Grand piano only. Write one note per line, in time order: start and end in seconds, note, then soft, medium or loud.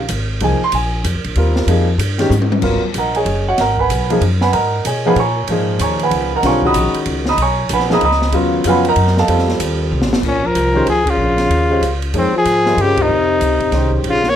0.42 0.59 F3 medium
0.42 0.59 A#3 medium
0.42 0.60 D#4 medium
0.42 0.60 G#4 medium
0.42 0.62 G#5 loud
0.64 0.74 C6 loud
0.75 1.03 G#5 medium
1.37 1.84 G3 medium
1.37 1.84 C4 medium
1.37 1.84 F4 medium
1.37 1.85 A#4 medium
1.68 1.86 F3 medium
1.68 1.86 A#3 medium
1.68 1.86 D#4 medium
1.68 1.87 G#4 medium
2.18 2.30 D#3 medium
2.18 2.30 G#3 medium
2.18 2.30 C#4 medium
2.18 2.31 G4 medium
2.62 2.80 F#3 medium
2.62 2.81 B3 medium
2.62 2.81 F4 medium
2.62 2.81 A#4 medium
2.98 3.16 A#4 medium
2.98 3.15 D#5 medium
2.98 3.16 F#5 medium
2.98 3.16 A#5 medium
3.16 3.45 G#4 medium
3.16 3.45 C#5 medium
3.16 3.45 D#5 medium
3.16 3.45 G#5 medium
3.48 3.59 F#4 medium
3.48 3.59 C#5 medium
3.48 3.59 D#5 medium
3.48 3.59 F#5 loud
3.60 3.79 A#4 medium
3.60 3.79 D#5 medium
3.60 3.79 F#5 medium
3.60 3.78 A#5 medium
3.79 4.08 B4 medium
3.79 4.09 F#5 medium
3.79 4.09 G#5 medium
3.79 4.08 B5 medium
4.10 4.21 F3 medium
4.10 4.21 A#3 medium
4.10 4.21 D#4 medium
4.10 4.22 G#4 medium
4.42 4.53 B4 medium
4.42 4.51 F#5 medium
4.42 4.53 G#5 medium
4.42 4.53 B5 loud
4.53 4.83 A#4 medium
4.53 4.83 D#5 medium
4.53 4.83 F#5 medium
4.53 4.83 A#5 medium
4.87 5.06 G#4 medium
4.87 5.05 C#5 medium
4.87 5.06 D#5 medium
4.87 5.05 G#5 medium
5.06 5.16 F3 medium
5.06 5.16 A#3 medium
5.06 5.16 D#4 medium
5.06 5.17 G#4 loud
5.06 5.18 B4 medium
5.06 5.17 F#5 medium
5.06 5.18 G#5 medium
5.06 5.18 B5 medium
5.19 5.48 C#5 medium
5.19 5.48 G#5 medium
5.19 5.48 A#5 medium
5.19 5.48 C#6 medium
5.50 6.38 A#2 medium
5.50 6.37 F3 medium
5.50 6.38 D#4 medium
5.50 6.38 G#4 medium
5.81 6.01 C#5 medium
5.81 6.01 G#5 medium
5.81 6.01 A#5 medium
5.81 6.00 C#6 medium
6.03 6.31 B4 medium
6.03 6.31 F#5 medium
6.03 6.31 G#5 medium
6.03 6.32 B5 loud
6.36 6.46 A#4 medium
6.36 6.46 D#5 medium
6.36 6.46 F#5 medium
6.36 6.45 A#5 medium
6.44 6.62 D3 medium
6.44 6.62 G3 medium
6.44 6.62 C4 medium
6.44 6.62 F4 medium
6.44 6.65 A#5 medium
6.44 6.64 C#6 medium
6.48 6.65 C#5 medium
6.48 6.65 G#5 medium
6.63 7.31 D#3 medium
6.63 7.32 G#3 medium
6.63 7.32 C#4 medium
6.63 7.32 F#4 medium
6.63 6.95 B5 medium
6.63 6.95 D#6 loud
6.67 6.95 D#5 medium
6.67 6.95 A#5 medium
7.29 7.39 D#5 medium
7.29 7.40 A#5 medium
7.29 7.39 B5 medium
7.29 7.39 D#6 loud
7.42 7.70 C#5 medium
7.42 7.70 G#5 medium
7.42 7.70 A#5 medium
7.42 7.70 C#6 loud
7.73 7.91 B4 medium
7.73 7.91 F#5 medium
7.73 7.91 G#5 medium
7.73 7.91 B5 medium
7.90 8.01 F3 medium
7.90 8.01 A#3 medium
7.90 8.02 D#4 medium
7.90 8.02 G#4 medium
7.90 8.03 B5 medium
7.90 8.03 D#6 loud
7.94 8.03 D#5 medium
7.94 8.03 A#5 medium
8.04 8.33 D#5 medium
8.04 8.33 A#5 medium
8.04 8.33 B5 medium
8.04 8.33 D#6 loud
8.33 8.64 C#3 medium
8.33 8.64 F#3 medium
8.33 8.65 B3 medium
8.33 8.65 F4 medium
8.65 8.83 C#3 medium
8.65 8.84 F#3 medium
8.65 8.84 B3 medium
8.65 8.84 F4 medium
8.65 8.86 B4 medium
8.65 8.86 F#5 medium
8.65 8.86 G#5 medium
8.65 8.87 B5 medium
8.88 9.17 A#4 medium
8.88 9.17 D#5 medium
8.88 9.16 F#5 medium
8.88 9.17 A#5 loud
9.19 9.29 A4 medium
9.19 9.48 D#5 medium
9.19 9.48 F5 medium
9.19 9.48 A5 loud
9.28 10.16 G3 medium
9.28 10.17 C4 medium
9.28 10.17 F4 medium
9.28 10.17 A4 medium
10.74 10.85 D#3 medium
10.74 10.86 G#3 medium
10.74 10.86 C#4 medium
10.74 10.86 G4 medium
10.74 10.87 C5 medium
11.70 11.81 G#3 medium
11.70 11.81 C#4 medium
11.70 11.82 G4 medium
11.70 11.82 C5 medium
11.70 11.82 F5 medium
12.14 12.32 F3 medium
12.14 12.32 A#3 medium
12.14 12.33 D#4 medium
12.14 12.33 G#4 medium
12.14 12.33 C#5 medium
12.65 13.07 G3 medium
12.65 13.07 C4 medium
12.65 13.07 F4 medium
12.65 13.08 A#4 medium
12.65 13.08 D#5 medium
13.73 14.21 D#3 medium
13.73 14.21 G#3 medium
13.73 14.21 C#4 medium
13.73 14.21 G4 medium
13.73 14.21 C5 medium